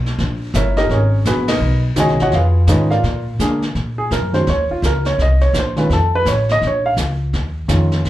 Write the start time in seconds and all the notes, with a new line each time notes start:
Already playing: B1
0.06 snare
0.18 A#1, brush sweep, kick, snare
0.54 G1 E4 A#4 C#5 E5, kick, snare, hi-hat pedal
0.77 D#4 G4 A#4 D#5, snare
0.89 G#1 C#4 G#4 A#4 C#5, brush sweep, kick, snare
1.25 A#1 B3 F#4 G#4 B4, kick, snare, hi-hat pedal
1.48 D#4 A#4 B4 D#5, snare, ride
1.60 B1, brush sweep
1.96 C#2 D#3 G#3 C#4 F#4 D#5 G#5, kick, snare, hi-hat pedal
2.00 G#4 C#5
2.08 B1, snare
2.20 G#1 F#4 C#5 D#5 F#5, snare
2.32 F2 F4 G#4 F5, brush sweep, kick, snare
2.36 B4
2.67 G#2 D#3 G#3 C#4 D#4 F4 G#4 B4 D#5, kick, snare, hi-hat pedal
2.91 F4 A#4 D5 F5, snare
3.03 A#2, brush sweep, kick, snare
3.39 D3 G#3 A#3 D4 G#4, kick, snare, hi-hat pedal
3.62 snare
3.75 A#2, brush sweep, kick, snare
3.98 G#4
4.11 F#2 A#4, kick, snare, hi-hat pedal
4.33 D#3 G#3 C#4 F#4 C5, snare
4.47 D#2 C#5, brush sweep, kick, snare
4.70 F4, muted upright bass stroke
4.82 C#2 A#4, kick, snare, hi-hat pedal
5.05 C#5, snare
5.18 C2 D#5, brush sweep, kick, snare
5.41 C#5, snare
5.53 A#1, kick, snare, hi-hat pedal
5.59 C5
5.76 D#3 G#3 C#4 F4 B4, snare
5.90 F2 A4, brush sweep, kick, snare
6.15 B4
6.25 A1 C#5, kick, snare, hi-hat pedal
6.49 D#5, snare
6.62 A#1, brush sweep, kick, snare
6.67 C#5
6.86 F5
6.97 C#2, kick, snare, hi-hat pedal
7.33 D#2, brush sweep, kick, snare
7.68 F2 D#3 G#3 C#4 F4, kick, snare, hi-hat pedal
7.92 snare
8.05 G#2, brush sweep, kick, snare